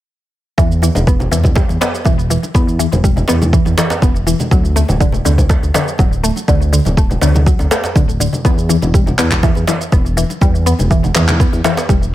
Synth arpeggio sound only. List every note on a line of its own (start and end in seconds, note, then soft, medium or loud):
0.58 0.70 E3 loud
0.83 0.90 E3 medium
1.07 1.19 B3 medium
1.32 1.39 E3 medium
1.56 1.69 G3 medium
1.81 1.88 B3 medium
2.06 2.17 E3 loud
2.30 2.37 E3 medium
2.55 2.67 B3 medium
2.79 2.86 E3 medium
3.04 3.16 G3 medium
3.28 3.35 B3 medium
3.53 3.65 E3 loud
3.77 3.85 E3 medium
4.02 4.14 B3 medium
4.27 4.34 E3 medium
4.51 4.64 F#3 medium
4.76 4.83 A3 medium
5.00 5.12 D3 loud
5.25 5.32 D3 medium
5.50 5.62 A3 medium
5.74 5.81 D3 medium
5.99 6.11 F#3 medium
6.23 6.30 A3 medium
6.48 6.60 D3 loud
6.73 6.80 D3 medium
6.97 7.10 A3 medium
7.22 7.29 D3 medium
7.47 7.59 F#3 medium
7.71 7.78 A3 medium
7.96 8.07 D3 loud
8.20 8.27 D3 medium
8.45 8.57 B3 medium
8.69 8.76 E3 medium
8.94 9.06 G3 medium
9.19 9.26 B3 medium
9.43 9.55 E3 loud
9.68 9.75 E3 medium
9.92 10.05 B3 medium
10.17 10.24 E3 medium
10.42 10.54 G3 medium
10.66 10.73 B3 medium
10.91 11.02 E3 medium
11.15 11.22 E3 medium
11.40 11.52 B3 medium
11.64 11.71 E3 medium
11.89 12.01 G3 medium